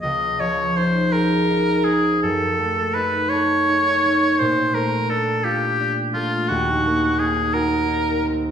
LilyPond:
<<
  \new Staff \with { instrumentName = "Oboe" } { \time 6/8 \key ges \major \tempo 4. = 56 ees''8 des''8 c''8 bes'4 aes'8 | a'4 ces''8 des''4. | c''8 bes'8 a'8 g'4 f'8 | ges'4 aes'8 bes'4 r8 | }
  \new Staff \with { instrumentName = "Harp" } { \time 6/8 \key ges \major << { des,8 f8 ees'8 aes'8 ees'8 c'8 | ges,8 a8 ees'8 a'8 ees'8 des'8 | bes,8 a8 d'8 f'8 d'8 a8 | ees,8 bes8 ees'8 ges'8 ees'8 c'8 | } \\ { <f des' aes'>2.~ | <f des' aes'>2. | r2. | r2. | } >> }
>>